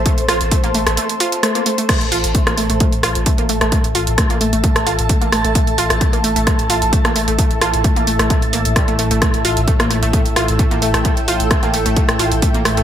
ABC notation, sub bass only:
X:1
M:4/4
L:1/16
Q:1/4=131
K:Am
V:1 name="Sub bass" clef=bass
z A,,, A,,, A,,, z A,,, A,,, A,,, z8 | z A,,, A,,, A,,, z A,,, A,,, A,,, z A,,, A,,, A,,, z A,,, A,,, A,,, | z A,,, A,,, A,,, z A,,, A,,, A,,, z A,,, A,,, A,,, z A,,, A,,, A,,, | z A,,, A,,, A,,, z A,,, A,,, A,,, z A,,, A,,, A,,, z A,,, A,,, A,,, |
z A,,, A,,, A,,, z A,,, A,,, A,,, z A,,, A,,, A,,, z A,,, A,,, A,,, | z A,,, A,,, A,,, z A,,, A,,, A,,, z A,,, A,,, A,,, z A,,, A,,, A,,, | z A,,, A,,, A,,, z A,,, A,,, A,,, z A,,, A,,, A,,, z A,,, A,,, A,,, |]